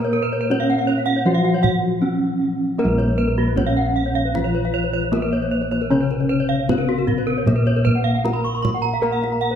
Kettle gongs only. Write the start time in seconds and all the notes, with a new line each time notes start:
Already playing: A#2 A#4
0.50 B3
1.26 F3
2.02 B3
2.79 A#4
2.84 A#1
3.57 B3
5.14 B3
5.91 C#4
6.68 B3
7.46 A#2
8.24 B3
9.02 A#4